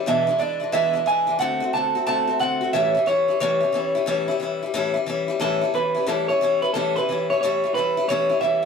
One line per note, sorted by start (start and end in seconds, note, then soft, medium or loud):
0.06 0.27 E2 medium
0.06 0.28 B2 medium
0.06 0.28 E3 medium
0.06 0.28 G#3 medium
0.06 0.27 D4 medium
0.06 0.26 E4 medium
0.06 0.38 E5 loud
0.27 0.37 E3 soft
0.27 0.38 G#3 medium
0.27 0.40 D4 medium
0.27 0.39 E4 medium
0.39 0.60 E3 medium
0.39 0.61 G#3 medium
0.39 0.60 D4 medium
0.39 0.59 E4 medium
0.39 0.71 D5 medium
0.60 0.72 E3 soft
0.60 0.72 G#3 soft
0.60 0.73 D4 soft
0.60 0.72 E4 soft
0.72 0.94 E2 medium
0.72 0.94 B2 medium
0.72 0.94 E3 medium
0.72 0.95 G#3 medium
0.72 0.94 D4 medium
0.72 0.92 E4 loud
0.72 1.07 E5 loud
0.93 1.05 E3 soft
0.93 1.07 G#3 soft
0.93 1.07 D4 soft
0.93 1.06 E4 medium
1.06 1.27 E3 medium
1.06 1.28 G#3 medium
1.06 1.26 D4 medium
1.06 1.26 E4 medium
1.06 1.39 G#5 loud
1.27 1.38 E3 soft
1.27 1.40 G#3 soft
1.27 1.40 D4 medium
1.27 1.39 E4 medium
1.39 1.61 D3 medium
1.39 1.61 A3 medium
1.39 1.61 C4 medium
1.39 1.59 F#4 loud
1.39 1.73 F#5 loud
1.60 1.73 A3 soft
1.60 1.74 C4 soft
1.60 1.73 F#4 medium
1.73 1.95 D3 medium
1.73 1.95 A3 medium
1.73 1.96 C4 medium
1.73 1.94 F#4 medium
1.73 2.05 A5 loud
1.95 2.06 A3 soft
1.95 2.07 C4 soft
1.95 2.07 F#4 medium
2.07 2.28 D3 medium
2.07 2.28 A3 medium
2.07 2.28 C4 medium
2.07 2.26 F#4 medium
2.07 2.40 A5 loud
2.27 2.39 A3 soft
2.27 2.40 C4 soft
2.27 2.40 F#4 medium
2.39 2.61 D3 medium
2.39 2.62 A3 medium
2.39 2.62 C4 medium
2.39 2.60 F#4 medium
2.39 2.73 F#5 loud
2.61 2.74 A3 soft
2.61 2.74 C4 medium
2.61 2.73 F#4 medium
2.73 2.95 A2 medium
2.73 2.95 E3 medium
2.73 2.95 G3 medium
2.73 2.96 C#4 medium
2.73 2.93 E4 medium
2.73 3.05 E5 loud
2.95 3.06 G3 soft
2.95 3.07 C#4 medium
2.95 3.07 E4 medium
3.06 3.28 E3 medium
3.06 3.29 G3 medium
3.06 3.29 C#4 medium
3.06 3.27 E4 medium
3.06 3.40 C#5 medium
3.28 3.40 G3 soft
3.28 3.41 C#4 soft
3.28 3.40 E4 soft
3.40 3.62 A2 medium
3.40 3.62 E3 medium
3.40 3.62 G3 loud
3.40 3.62 C#4 medium
3.40 3.59 E4 medium
3.40 4.37 C#5 medium
3.60 3.73 G3 soft
3.60 3.74 C#4 soft
3.60 3.73 E4 medium
3.72 3.94 E3 medium
3.72 3.95 G3 medium
3.72 3.95 C#4 medium
3.72 3.94 E4 medium
3.95 4.06 G3 medium
3.95 4.07 C#4 medium
3.95 4.07 E4 medium
4.06 4.28 A2 medium
4.06 4.29 E3 medium
4.06 4.29 G3 medium
4.06 4.29 C#4 loud
4.06 4.27 E4 loud
4.28 4.40 G3 medium
4.28 4.41 C#4 medium
4.28 4.40 E4 medium
4.40 4.62 E3 medium
4.40 4.62 G3 medium
4.40 4.63 C#4 medium
4.40 4.61 E4 medium
4.63 4.74 G3 soft
4.63 4.74 C#4 soft
4.63 4.75 E4 medium
4.74 4.95 A2 medium
4.74 4.95 E3 medium
4.74 4.96 G3 medium
4.74 4.94 C#4 loud
4.74 4.92 E4 loud
4.94 5.06 G3 soft
4.94 5.07 C#4 medium
4.94 5.07 E4 medium
5.06 5.28 E3 medium
5.06 5.29 G3 medium
5.06 5.29 C#4 medium
5.06 5.27 E4 medium
5.28 5.40 G3 medium
5.28 5.40 C#4 medium
5.28 5.41 E4 medium
5.40 5.62 A2 medium
5.40 5.62 E3 medium
5.40 5.62 G3 medium
5.40 5.62 C#4 medium
5.40 5.60 E4 medium
5.40 5.74 A4 medium
5.61 5.74 G3 medium
5.61 5.75 C#4 medium
5.61 5.74 E4 medium
5.74 5.96 E3 medium
5.74 5.96 G3 medium
5.74 5.95 C#4 medium
5.74 5.93 E4 medium
5.74 6.08 B4 medium
5.95 6.07 G3 soft
5.95 6.08 C#4 soft
5.95 6.07 E4 medium
6.07 6.29 A2 medium
6.07 6.29 E3 medium
6.07 6.30 G3 medium
6.07 6.29 C#4 medium
6.07 6.28 E4 medium
6.07 6.28 A4 medium
6.28 6.41 G3 soft
6.28 6.42 C#4 medium
6.28 6.41 E4 medium
6.28 6.62 C#5 medium
6.41 6.63 E3 medium
6.41 6.63 G3 medium
6.41 6.63 C#4 medium
6.41 6.61 E4 medium
6.62 6.74 G3 soft
6.62 6.75 C#4 medium
6.62 6.75 E4 medium
6.62 6.73 B4 medium
6.74 6.96 A2 medium
6.74 6.96 E3 medium
6.74 6.97 G3 medium
6.74 6.97 C#4 medium
6.74 6.95 E4 loud
6.74 6.96 A4 medium
6.96 7.09 G3 soft
6.96 7.09 C#4 medium
6.96 7.08 E4 medium
6.96 7.30 B4 medium
7.09 7.30 E3 medium
7.09 7.31 G3 medium
7.09 7.31 C#4 medium
7.09 7.29 E4 medium
7.30 7.43 C#4 medium
7.30 7.42 E4 medium
7.30 7.35 C#5 medium
7.34 7.43 G3 soft
7.41 7.64 A2 medium
7.41 7.64 E3 medium
7.41 7.65 G3 medium
7.41 7.64 C#4 medium
7.41 7.74 C#5 medium
7.45 7.62 E4 medium
7.64 7.75 G3 soft
7.64 7.77 C#4 medium
7.64 7.76 E4 soft
7.74 7.97 E3 medium
7.74 7.97 G3 medium
7.74 7.98 C#4 medium
7.74 8.06 B4 loud
7.79 7.96 E4 medium
7.97 8.09 G3 soft
7.97 8.10 C#4 medium
7.97 8.09 E4 medium
8.08 8.30 A2 medium
8.08 8.31 E3 medium
8.08 8.31 G3 medium
8.08 8.30 C#4 medium
8.08 8.28 E4 medium
8.08 8.40 C#5 medium
8.30 8.41 G3 soft
8.30 8.42 C#4 soft
8.30 8.42 E4 medium
8.41 8.63 E3 medium
8.41 8.64 G3 medium
8.41 8.64 C#4 medium
8.41 8.61 E4 medium
8.41 8.65 E5 medium